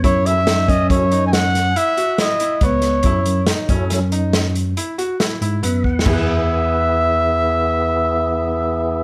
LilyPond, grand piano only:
\new Staff \with { instrumentName = "Grand piano" } { \time 7/4 \key e \major \tempo 4 = 140 e'4 dis'8 cis'4 dis'4 r8 e'8 fis'8 e'8 e'8 b4 | e'4 dis'8 cis'4 dis'4 r8 e'8 fis'8 e'8 e'8 b4 | <e' gis' b' e''>1.~ <e' gis' b' e''>4 | }